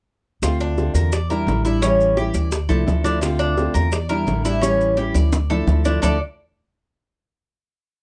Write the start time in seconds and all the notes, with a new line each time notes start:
0.42 D2 D3 A3 C4 F4, high bongo, maracas
0.60 D4, maracas
0.78 D3 A3 C4 F4, high bongo, maracas
0.94 E2 A#4, high bongo, maracas
1.12 D5, muted nylon-string guitar stroke, high bongo, maracas
1.30 G3 D4 E4 A#4, high bongo, maracas
1.47 A1 D3 G3 D4 E4, high bongo, low bongo, maracas
1.65 G3 D4 E4, high bongo, maracas
1.82 E3 G3 C#4 E4, high bongo, maracas
2.01 maracas
2.17 E3 G3 C#4 E4 G4, high bongo, maracas
2.34 D2 D5, high bongo, maracas
2.52 muted nylon-string guitar stroke, high bongo, maracas
2.69 C2 F3 A3 D4 E4 A4, high bongo, maracas
2.86 D2 F3 A3 D4 E4, high bongo, low bongo, maracas
3.04 F3 A3 D4 E4, high bongo, maracas
3.21 D3 A3 C4 F4, high bongo, maracas
3.39 D4, maracas
3.57 D3 A3 C4 F4, high bongo, maracas
3.74 E2 A#4, high bongo, maracas
3.92 D5, muted nylon-string guitar stroke, high bongo, maracas
4.09 G3 D4 E4 A#4, high bongo, maracas
4.27 A1 D3 G3 D4 E4, high bongo, low bongo, maracas
4.45 G3 D4 E4, high bongo, maracas
4.61 E3 G3 C#4 E4, high bongo, maracas
4.81 maracas
4.97 E3 G3 C#4 E4 G4, high bongo, maracas
5.14 D2 D5, low bongo, maracas
5.32 muted nylon-string guitar stroke, low bongo, maracas
5.50 F3 A3 D4 E4 A4, low bongo, maracas
5.67 D2 F3 A3 D4 E4, low bongo, maracas
5.85 F3 A3 D4 E4, low bongo, maracas
6.02 D2 D3 F3 A3 D4 E4 A4 D5, low bongo, maracas